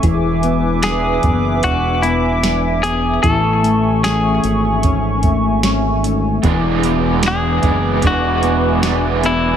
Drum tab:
HH |xxxxxxxx|xxxxxxxx|xxxxxxxx|
SD |--o---o-|--o---o-|--o---o-|
BD |o--oo---|o---oo--|o--oo---|